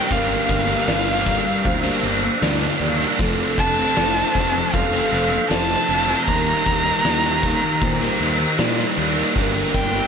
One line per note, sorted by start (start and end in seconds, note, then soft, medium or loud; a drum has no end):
0.00 0.11 D4 medium
0.00 6.24 D4 medium
0.00 3.15 G4 medium
0.00 3.15 A#4 medium
0.00 0.11 C5 medium
0.00 10.07 F5 medium
0.00 0.13 G5 loud
0.10 0.35 G1 medium
0.10 0.86 G2 medium
0.10 0.87 D3 medium
0.10 0.69 G3 loud
0.10 0.68 A#3 loud
0.10 0.68 D4 loud
0.10 0.88 A#4 medium
0.10 2.43 F5 medium
0.10 kick loud
0.10 crash medium
0.49 0.74 G1 medium
0.49 kick medium
0.49 crash medium
0.68 0.87 G3 medium
0.68 0.88 A#3 medium
0.68 0.89 D4 medium
0.87 1.36 G1 medium
0.87 1.65 G2 loud
0.87 1.25 D3 medium
0.87 1.25 G3 loud
0.87 1.26 A#3 loud
0.87 1.28 D4 loud
0.87 snare loud
0.87 crash medium
1.26 1.45 D3 medium
1.26 1.45 G3 medium
1.26 1.45 A#3 medium
1.26 1.45 D4 medium
1.26 kick medium
1.26 crash medium
1.46 muted distorted electric guitar stroke medium
1.65 1.89 D2 loud
1.65 2.43 C5 medium
1.65 kick loud
1.65 crash medium
1.84 2.02 G3 medium
1.84 2.03 A#3 medium
1.84 2.03 D4 medium
2.03 2.28 G1 loud
2.03 2.22 D3 medium
2.03 2.22 G3 medium
2.03 2.22 A#3 medium
2.03 2.21 D4 loud
2.03 crash medium
2.22 muted distorted electric guitar stroke medium
2.42 2.67 D2 medium
2.42 3.00 G2 loud
2.42 3.00 D3 loud
2.42 2.62 G3 loud
2.42 2.61 A#3 loud
2.42 2.60 D4 loud
2.42 2.80 D5 medium
2.42 snare loud
2.42 crash medium
2.61 3.01 G3 medium
2.61 3.00 A#3 medium
2.61 3.00 D4 medium
2.80 3.05 D#2 medium
2.80 3.19 D5 medium
2.80 crash medium
3.01 3.18 G3 medium
3.01 3.18 A#3 medium
3.01 3.18 D4 medium
3.19 3.44 F1 medium
3.19 3.95 F2 medium
3.19 3.96 C3 medium
3.19 3.80 F3 loud
3.19 3.78 A3 loud
3.19 3.76 C4 loud
3.19 6.25 A4 medium
3.19 3.97 A4 loud
3.19 6.25 C5 medium
3.19 kick loud
3.19 crash medium
3.58 3.82 F1 loud
3.58 4.75 A5 loud
3.58 kick medium
3.58 crash medium
3.78 3.98 F3 medium
3.78 3.97 A3 medium
3.78 3.98 C4 medium
3.97 4.21 F1 medium
3.97 4.74 F2 loud
3.97 4.34 C3 loud
3.97 4.35 F3 loud
3.97 4.35 A3 loud
3.97 4.36 C4 loud
3.97 4.74 C5 medium
3.97 snare loud
3.97 crash medium
4.35 4.60 F1 medium
4.35 4.55 C3 medium
4.35 4.55 F3 medium
4.35 4.54 A3 medium
4.35 4.54 C4 medium
4.35 kick medium
4.35 crash medium
4.55 muted distorted electric guitar stroke medium
4.73 4.98 F1 loud
4.73 5.51 A4 loud
4.73 5.49 F5 medium
4.73 kick loud
4.73 crash medium
4.93 5.12 F3 medium
4.93 5.12 A3 medium
4.93 5.13 C4 medium
5.12 5.37 F1 loud
5.12 5.31 C3 medium
5.12 5.31 F3 medium
5.12 5.30 A3 medium
5.12 5.30 C4 medium
5.12 crash medium
5.31 muted distorted electric guitar stroke medium
5.48 5.75 F1 medium
5.48 6.08 F2 loud
5.48 6.08 C3 loud
5.48 5.70 F3 loud
5.48 5.68 A3 loud
5.48 5.67 C4 loud
5.48 6.28 C5 medium
5.48 6.24 A5 loud
5.48 snare loud
5.48 crash medium
5.68 6.09 F3 medium
5.68 6.08 A3 medium
5.68 6.06 C4 medium
5.89 6.13 F1 medium
5.89 crash medium
6.08 6.27 F3 medium
6.08 6.26 A3 medium
6.08 6.25 C4 medium
6.25 6.52 D#2 loud
6.25 7.03 D#3 loud
6.25 6.87 G3 medium
6.25 6.86 A#3 loud
6.25 9.33 D#4 medium
6.25 9.33 G4 medium
6.25 10.07 A#4 medium
6.25 8.54 A#5 loud
6.25 kick loud
6.25 crash medium
6.29 6.84 D#4 loud
6.29 7.05 A#4 medium
6.66 6.91 D#2 loud
6.66 kick medium
6.66 crash medium
6.85 7.04 G3 medium
6.85 7.05 A#3 medium
6.85 7.05 D#4 medium
7.04 7.54 D#2 medium
7.04 7.42 D#3 loud
7.04 7.44 G3 medium
7.04 7.45 A#3 loud
7.04 7.44 D#4 loud
7.04 snare loud
7.04 crash medium
7.43 8.01 D#3 medium
7.43 7.64 G3 medium
7.43 7.63 A#3 medium
7.43 7.62 D#4 medium
7.43 kick medium
7.43 crash medium
7.63 muted distorted electric guitar stroke medium
7.82 8.06 A#2 loud
7.82 8.60 C5 medium
7.82 kick loud
7.82 crash medium
8.02 8.21 G3 medium
8.02 8.21 A#3 medium
8.02 8.21 D#4 medium
8.20 8.44 D#2 medium
8.20 8.58 D#3 medium
8.20 8.41 G3 medium
8.20 8.40 A#3 medium
8.20 8.39 D#4 medium
8.20 crash medium
8.40 muted distorted electric guitar stroke medium
8.59 8.83 A#2 medium
8.59 9.17 D#3 loud
8.59 8.79 G3 loud
8.59 8.78 A#3 loud
8.59 8.76 D#4 loud
8.59 8.99 D5 medium
8.59 snare loud
8.59 crash medium
8.78 9.17 G3 medium
8.78 9.16 A#3 medium
8.78 9.14 D#4 medium
8.97 9.22 D#2 medium
8.97 9.38 D5 medium
8.97 crash medium
9.16 9.36 G3 medium
9.16 9.37 A#3 medium
9.16 9.33 D#4 medium
9.35 9.60 G1 loud
9.35 10.07 G2 medium
9.35 10.07 D3 medium
9.35 9.95 G3 medium
9.35 9.94 A#3 medium
9.35 10.07 D4 medium
9.35 9.93 D4 loud
9.35 10.07 G4 medium
9.35 10.07 A#4 medium
9.35 kick loud
9.35 crash medium
9.74 9.99 G1 medium
9.74 10.07 G5 loud
9.74 kick medium
9.74 crash medium
9.93 10.07 G3 medium
9.93 10.07 A#3 medium
9.93 10.07 D4 medium